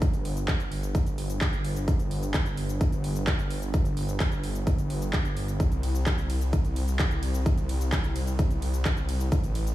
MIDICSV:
0, 0, Header, 1, 3, 480
1, 0, Start_track
1, 0, Tempo, 465116
1, 18, Time_signature, 4, 2, 24, 8
1, 10060, End_track
2, 0, Start_track
2, 0, Title_t, "Detuned saw bass"
2, 0, Program_c, 0, 39
2, 0, Note_on_c, 0, 31, 92
2, 5754, Note_off_c, 0, 31, 0
2, 5778, Note_on_c, 0, 36, 94
2, 9594, Note_off_c, 0, 36, 0
2, 9618, Note_on_c, 0, 33, 91
2, 10060, Note_off_c, 0, 33, 0
2, 10060, End_track
3, 0, Start_track
3, 0, Title_t, "Drums"
3, 18, Note_on_c, 9, 36, 127
3, 20, Note_on_c, 9, 42, 65
3, 22, Note_on_c, 9, 82, 53
3, 121, Note_off_c, 9, 36, 0
3, 123, Note_off_c, 9, 42, 0
3, 126, Note_off_c, 9, 82, 0
3, 139, Note_on_c, 9, 42, 41
3, 142, Note_on_c, 9, 82, 34
3, 242, Note_off_c, 9, 42, 0
3, 245, Note_off_c, 9, 82, 0
3, 259, Note_on_c, 9, 46, 112
3, 362, Note_off_c, 9, 46, 0
3, 379, Note_on_c, 9, 42, 40
3, 381, Note_on_c, 9, 82, 66
3, 482, Note_off_c, 9, 42, 0
3, 485, Note_off_c, 9, 82, 0
3, 496, Note_on_c, 9, 39, 127
3, 498, Note_on_c, 9, 36, 127
3, 499, Note_on_c, 9, 42, 71
3, 501, Note_on_c, 9, 82, 55
3, 599, Note_off_c, 9, 39, 0
3, 601, Note_off_c, 9, 36, 0
3, 602, Note_off_c, 9, 42, 0
3, 604, Note_off_c, 9, 82, 0
3, 619, Note_on_c, 9, 42, 43
3, 621, Note_on_c, 9, 82, 34
3, 722, Note_off_c, 9, 42, 0
3, 725, Note_off_c, 9, 82, 0
3, 738, Note_on_c, 9, 46, 109
3, 841, Note_off_c, 9, 46, 0
3, 859, Note_on_c, 9, 42, 41
3, 861, Note_on_c, 9, 82, 66
3, 962, Note_off_c, 9, 42, 0
3, 965, Note_off_c, 9, 82, 0
3, 978, Note_on_c, 9, 36, 119
3, 979, Note_on_c, 9, 42, 69
3, 981, Note_on_c, 9, 82, 54
3, 1081, Note_off_c, 9, 36, 0
3, 1082, Note_off_c, 9, 42, 0
3, 1085, Note_off_c, 9, 82, 0
3, 1099, Note_on_c, 9, 42, 41
3, 1101, Note_on_c, 9, 82, 34
3, 1202, Note_off_c, 9, 42, 0
3, 1204, Note_off_c, 9, 82, 0
3, 1218, Note_on_c, 9, 46, 111
3, 1322, Note_off_c, 9, 46, 0
3, 1339, Note_on_c, 9, 42, 42
3, 1341, Note_on_c, 9, 82, 67
3, 1442, Note_off_c, 9, 42, 0
3, 1444, Note_off_c, 9, 82, 0
3, 1457, Note_on_c, 9, 39, 126
3, 1458, Note_on_c, 9, 36, 124
3, 1459, Note_on_c, 9, 42, 68
3, 1462, Note_on_c, 9, 82, 57
3, 1560, Note_off_c, 9, 39, 0
3, 1561, Note_off_c, 9, 36, 0
3, 1562, Note_off_c, 9, 42, 0
3, 1565, Note_off_c, 9, 82, 0
3, 1579, Note_on_c, 9, 42, 40
3, 1581, Note_on_c, 9, 82, 34
3, 1682, Note_off_c, 9, 42, 0
3, 1684, Note_off_c, 9, 82, 0
3, 1698, Note_on_c, 9, 46, 114
3, 1801, Note_off_c, 9, 46, 0
3, 1818, Note_on_c, 9, 42, 41
3, 1821, Note_on_c, 9, 82, 69
3, 1922, Note_off_c, 9, 42, 0
3, 1924, Note_off_c, 9, 82, 0
3, 1938, Note_on_c, 9, 36, 124
3, 1938, Note_on_c, 9, 42, 64
3, 1941, Note_on_c, 9, 82, 54
3, 2041, Note_off_c, 9, 36, 0
3, 2041, Note_off_c, 9, 42, 0
3, 2044, Note_off_c, 9, 82, 0
3, 2058, Note_on_c, 9, 42, 40
3, 2060, Note_on_c, 9, 82, 31
3, 2161, Note_off_c, 9, 42, 0
3, 2164, Note_off_c, 9, 82, 0
3, 2177, Note_on_c, 9, 46, 110
3, 2281, Note_off_c, 9, 46, 0
3, 2298, Note_on_c, 9, 42, 38
3, 2300, Note_on_c, 9, 82, 66
3, 2401, Note_off_c, 9, 42, 0
3, 2404, Note_off_c, 9, 82, 0
3, 2415, Note_on_c, 9, 39, 126
3, 2417, Note_on_c, 9, 42, 66
3, 2418, Note_on_c, 9, 36, 125
3, 2420, Note_on_c, 9, 82, 54
3, 2518, Note_off_c, 9, 39, 0
3, 2520, Note_off_c, 9, 42, 0
3, 2521, Note_off_c, 9, 36, 0
3, 2523, Note_off_c, 9, 82, 0
3, 2537, Note_on_c, 9, 42, 41
3, 2540, Note_on_c, 9, 82, 32
3, 2640, Note_off_c, 9, 42, 0
3, 2643, Note_off_c, 9, 82, 0
3, 2656, Note_on_c, 9, 46, 111
3, 2760, Note_off_c, 9, 46, 0
3, 2778, Note_on_c, 9, 42, 41
3, 2780, Note_on_c, 9, 82, 65
3, 2881, Note_off_c, 9, 42, 0
3, 2883, Note_off_c, 9, 82, 0
3, 2898, Note_on_c, 9, 36, 122
3, 2898, Note_on_c, 9, 42, 66
3, 2901, Note_on_c, 9, 82, 54
3, 3001, Note_off_c, 9, 36, 0
3, 3001, Note_off_c, 9, 42, 0
3, 3004, Note_off_c, 9, 82, 0
3, 3018, Note_on_c, 9, 42, 40
3, 3020, Note_on_c, 9, 82, 31
3, 3121, Note_off_c, 9, 42, 0
3, 3123, Note_off_c, 9, 82, 0
3, 3137, Note_on_c, 9, 46, 111
3, 3240, Note_off_c, 9, 46, 0
3, 3257, Note_on_c, 9, 42, 39
3, 3259, Note_on_c, 9, 82, 64
3, 3360, Note_off_c, 9, 42, 0
3, 3362, Note_off_c, 9, 82, 0
3, 3375, Note_on_c, 9, 39, 127
3, 3377, Note_on_c, 9, 42, 66
3, 3378, Note_on_c, 9, 36, 123
3, 3380, Note_on_c, 9, 82, 55
3, 3478, Note_off_c, 9, 39, 0
3, 3481, Note_off_c, 9, 36, 0
3, 3481, Note_off_c, 9, 42, 0
3, 3483, Note_off_c, 9, 82, 0
3, 3498, Note_on_c, 9, 42, 38
3, 3500, Note_on_c, 9, 82, 32
3, 3601, Note_off_c, 9, 42, 0
3, 3603, Note_off_c, 9, 82, 0
3, 3617, Note_on_c, 9, 46, 115
3, 3720, Note_off_c, 9, 46, 0
3, 3736, Note_on_c, 9, 42, 40
3, 3739, Note_on_c, 9, 82, 66
3, 3840, Note_off_c, 9, 42, 0
3, 3842, Note_off_c, 9, 82, 0
3, 3857, Note_on_c, 9, 42, 61
3, 3858, Note_on_c, 9, 36, 123
3, 3859, Note_on_c, 9, 82, 53
3, 3960, Note_off_c, 9, 42, 0
3, 3961, Note_off_c, 9, 36, 0
3, 3962, Note_off_c, 9, 82, 0
3, 3976, Note_on_c, 9, 42, 40
3, 3979, Note_on_c, 9, 82, 33
3, 4079, Note_off_c, 9, 42, 0
3, 4082, Note_off_c, 9, 82, 0
3, 4096, Note_on_c, 9, 46, 111
3, 4199, Note_off_c, 9, 46, 0
3, 4217, Note_on_c, 9, 42, 38
3, 4219, Note_on_c, 9, 82, 64
3, 4320, Note_off_c, 9, 42, 0
3, 4323, Note_off_c, 9, 82, 0
3, 4334, Note_on_c, 9, 39, 120
3, 4337, Note_on_c, 9, 42, 65
3, 4338, Note_on_c, 9, 36, 127
3, 4339, Note_on_c, 9, 82, 57
3, 4438, Note_off_c, 9, 39, 0
3, 4440, Note_off_c, 9, 42, 0
3, 4441, Note_off_c, 9, 36, 0
3, 4442, Note_off_c, 9, 82, 0
3, 4456, Note_on_c, 9, 42, 39
3, 4459, Note_on_c, 9, 82, 33
3, 4560, Note_off_c, 9, 42, 0
3, 4562, Note_off_c, 9, 82, 0
3, 4577, Note_on_c, 9, 46, 112
3, 4680, Note_off_c, 9, 46, 0
3, 4697, Note_on_c, 9, 42, 39
3, 4700, Note_on_c, 9, 82, 64
3, 4800, Note_off_c, 9, 42, 0
3, 4803, Note_off_c, 9, 82, 0
3, 4817, Note_on_c, 9, 42, 64
3, 4818, Note_on_c, 9, 36, 121
3, 4820, Note_on_c, 9, 82, 56
3, 4920, Note_off_c, 9, 42, 0
3, 4921, Note_off_c, 9, 36, 0
3, 4923, Note_off_c, 9, 82, 0
3, 4937, Note_on_c, 9, 42, 38
3, 4940, Note_on_c, 9, 82, 33
3, 5040, Note_off_c, 9, 42, 0
3, 5043, Note_off_c, 9, 82, 0
3, 5057, Note_on_c, 9, 46, 108
3, 5160, Note_off_c, 9, 46, 0
3, 5178, Note_on_c, 9, 42, 39
3, 5180, Note_on_c, 9, 82, 66
3, 5281, Note_off_c, 9, 42, 0
3, 5284, Note_off_c, 9, 82, 0
3, 5295, Note_on_c, 9, 39, 117
3, 5297, Note_on_c, 9, 42, 61
3, 5298, Note_on_c, 9, 36, 126
3, 5300, Note_on_c, 9, 82, 55
3, 5398, Note_off_c, 9, 39, 0
3, 5401, Note_off_c, 9, 42, 0
3, 5402, Note_off_c, 9, 36, 0
3, 5403, Note_off_c, 9, 82, 0
3, 5418, Note_on_c, 9, 42, 37
3, 5420, Note_on_c, 9, 82, 33
3, 5521, Note_off_c, 9, 42, 0
3, 5524, Note_off_c, 9, 82, 0
3, 5538, Note_on_c, 9, 46, 113
3, 5641, Note_off_c, 9, 46, 0
3, 5659, Note_on_c, 9, 42, 41
3, 5661, Note_on_c, 9, 82, 68
3, 5762, Note_off_c, 9, 42, 0
3, 5765, Note_off_c, 9, 82, 0
3, 5778, Note_on_c, 9, 36, 122
3, 5779, Note_on_c, 9, 42, 61
3, 5781, Note_on_c, 9, 82, 55
3, 5882, Note_off_c, 9, 36, 0
3, 5882, Note_off_c, 9, 42, 0
3, 5885, Note_off_c, 9, 82, 0
3, 5900, Note_on_c, 9, 42, 40
3, 5902, Note_on_c, 9, 82, 35
3, 6003, Note_off_c, 9, 42, 0
3, 6005, Note_off_c, 9, 82, 0
3, 6019, Note_on_c, 9, 46, 104
3, 6019, Note_on_c, 9, 51, 84
3, 6122, Note_off_c, 9, 46, 0
3, 6122, Note_off_c, 9, 51, 0
3, 6139, Note_on_c, 9, 42, 38
3, 6142, Note_on_c, 9, 82, 68
3, 6242, Note_off_c, 9, 42, 0
3, 6245, Note_off_c, 9, 82, 0
3, 6257, Note_on_c, 9, 39, 116
3, 6258, Note_on_c, 9, 36, 116
3, 6260, Note_on_c, 9, 42, 65
3, 6262, Note_on_c, 9, 82, 57
3, 6360, Note_off_c, 9, 39, 0
3, 6362, Note_off_c, 9, 36, 0
3, 6363, Note_off_c, 9, 42, 0
3, 6365, Note_off_c, 9, 82, 0
3, 6379, Note_on_c, 9, 42, 38
3, 6382, Note_on_c, 9, 82, 36
3, 6483, Note_off_c, 9, 42, 0
3, 6485, Note_off_c, 9, 82, 0
3, 6499, Note_on_c, 9, 46, 107
3, 6499, Note_on_c, 9, 51, 82
3, 6602, Note_off_c, 9, 46, 0
3, 6602, Note_off_c, 9, 51, 0
3, 6619, Note_on_c, 9, 42, 38
3, 6622, Note_on_c, 9, 82, 70
3, 6722, Note_off_c, 9, 42, 0
3, 6725, Note_off_c, 9, 82, 0
3, 6738, Note_on_c, 9, 42, 65
3, 6739, Note_on_c, 9, 36, 118
3, 6741, Note_on_c, 9, 82, 58
3, 6841, Note_off_c, 9, 42, 0
3, 6842, Note_off_c, 9, 36, 0
3, 6844, Note_off_c, 9, 82, 0
3, 6858, Note_on_c, 9, 42, 39
3, 6861, Note_on_c, 9, 82, 34
3, 6961, Note_off_c, 9, 42, 0
3, 6964, Note_off_c, 9, 82, 0
3, 6978, Note_on_c, 9, 46, 103
3, 6978, Note_on_c, 9, 51, 80
3, 7082, Note_off_c, 9, 46, 0
3, 7082, Note_off_c, 9, 51, 0
3, 7098, Note_on_c, 9, 42, 38
3, 7101, Note_on_c, 9, 82, 70
3, 7202, Note_off_c, 9, 42, 0
3, 7204, Note_off_c, 9, 82, 0
3, 7216, Note_on_c, 9, 39, 114
3, 7218, Note_on_c, 9, 36, 119
3, 7218, Note_on_c, 9, 42, 67
3, 7220, Note_on_c, 9, 82, 57
3, 7319, Note_off_c, 9, 39, 0
3, 7321, Note_off_c, 9, 42, 0
3, 7322, Note_off_c, 9, 36, 0
3, 7324, Note_off_c, 9, 82, 0
3, 7338, Note_on_c, 9, 42, 38
3, 7340, Note_on_c, 9, 82, 35
3, 7441, Note_off_c, 9, 42, 0
3, 7444, Note_off_c, 9, 82, 0
3, 7458, Note_on_c, 9, 46, 106
3, 7458, Note_on_c, 9, 51, 86
3, 7561, Note_off_c, 9, 46, 0
3, 7561, Note_off_c, 9, 51, 0
3, 7578, Note_on_c, 9, 42, 38
3, 7581, Note_on_c, 9, 82, 73
3, 7681, Note_off_c, 9, 42, 0
3, 7684, Note_off_c, 9, 82, 0
3, 7698, Note_on_c, 9, 36, 119
3, 7698, Note_on_c, 9, 42, 64
3, 7701, Note_on_c, 9, 82, 58
3, 7801, Note_off_c, 9, 36, 0
3, 7801, Note_off_c, 9, 42, 0
3, 7804, Note_off_c, 9, 82, 0
3, 7818, Note_on_c, 9, 42, 40
3, 7821, Note_on_c, 9, 82, 37
3, 7921, Note_off_c, 9, 42, 0
3, 7924, Note_off_c, 9, 82, 0
3, 7938, Note_on_c, 9, 46, 99
3, 7938, Note_on_c, 9, 51, 86
3, 8041, Note_off_c, 9, 46, 0
3, 8041, Note_off_c, 9, 51, 0
3, 8059, Note_on_c, 9, 42, 39
3, 8061, Note_on_c, 9, 82, 68
3, 8162, Note_off_c, 9, 42, 0
3, 8164, Note_off_c, 9, 82, 0
3, 8176, Note_on_c, 9, 39, 118
3, 8178, Note_on_c, 9, 36, 117
3, 8178, Note_on_c, 9, 42, 67
3, 8181, Note_on_c, 9, 82, 59
3, 8279, Note_off_c, 9, 39, 0
3, 8281, Note_off_c, 9, 36, 0
3, 8281, Note_off_c, 9, 42, 0
3, 8284, Note_off_c, 9, 82, 0
3, 8298, Note_on_c, 9, 42, 41
3, 8300, Note_on_c, 9, 82, 36
3, 8401, Note_off_c, 9, 42, 0
3, 8403, Note_off_c, 9, 82, 0
3, 8417, Note_on_c, 9, 46, 105
3, 8417, Note_on_c, 9, 51, 85
3, 8521, Note_off_c, 9, 46, 0
3, 8521, Note_off_c, 9, 51, 0
3, 8537, Note_on_c, 9, 42, 41
3, 8540, Note_on_c, 9, 82, 71
3, 8641, Note_off_c, 9, 42, 0
3, 8643, Note_off_c, 9, 82, 0
3, 8657, Note_on_c, 9, 42, 67
3, 8658, Note_on_c, 9, 36, 112
3, 8660, Note_on_c, 9, 82, 59
3, 8760, Note_off_c, 9, 42, 0
3, 8761, Note_off_c, 9, 36, 0
3, 8763, Note_off_c, 9, 82, 0
3, 8777, Note_on_c, 9, 42, 40
3, 8780, Note_on_c, 9, 82, 35
3, 8881, Note_off_c, 9, 42, 0
3, 8883, Note_off_c, 9, 82, 0
3, 8898, Note_on_c, 9, 46, 100
3, 8898, Note_on_c, 9, 51, 79
3, 9001, Note_off_c, 9, 46, 0
3, 9001, Note_off_c, 9, 51, 0
3, 9017, Note_on_c, 9, 42, 40
3, 9020, Note_on_c, 9, 82, 71
3, 9120, Note_off_c, 9, 42, 0
3, 9123, Note_off_c, 9, 82, 0
3, 9135, Note_on_c, 9, 39, 116
3, 9137, Note_on_c, 9, 42, 67
3, 9138, Note_on_c, 9, 36, 118
3, 9140, Note_on_c, 9, 82, 59
3, 9238, Note_off_c, 9, 39, 0
3, 9240, Note_off_c, 9, 42, 0
3, 9241, Note_off_c, 9, 36, 0
3, 9243, Note_off_c, 9, 82, 0
3, 9257, Note_on_c, 9, 42, 38
3, 9259, Note_on_c, 9, 82, 36
3, 9360, Note_off_c, 9, 42, 0
3, 9363, Note_off_c, 9, 82, 0
3, 9377, Note_on_c, 9, 46, 110
3, 9377, Note_on_c, 9, 51, 87
3, 9481, Note_off_c, 9, 46, 0
3, 9481, Note_off_c, 9, 51, 0
3, 9497, Note_on_c, 9, 42, 41
3, 9499, Note_on_c, 9, 82, 74
3, 9600, Note_off_c, 9, 42, 0
3, 9603, Note_off_c, 9, 82, 0
3, 9617, Note_on_c, 9, 42, 68
3, 9618, Note_on_c, 9, 36, 119
3, 9619, Note_on_c, 9, 82, 58
3, 9720, Note_off_c, 9, 42, 0
3, 9721, Note_off_c, 9, 36, 0
3, 9722, Note_off_c, 9, 82, 0
3, 9738, Note_on_c, 9, 42, 41
3, 9740, Note_on_c, 9, 82, 37
3, 9841, Note_off_c, 9, 42, 0
3, 9843, Note_off_c, 9, 82, 0
3, 9857, Note_on_c, 9, 46, 102
3, 9857, Note_on_c, 9, 51, 80
3, 9960, Note_off_c, 9, 46, 0
3, 9960, Note_off_c, 9, 51, 0
3, 9977, Note_on_c, 9, 42, 42
3, 9980, Note_on_c, 9, 82, 71
3, 10060, Note_off_c, 9, 42, 0
3, 10060, Note_off_c, 9, 82, 0
3, 10060, End_track
0, 0, End_of_file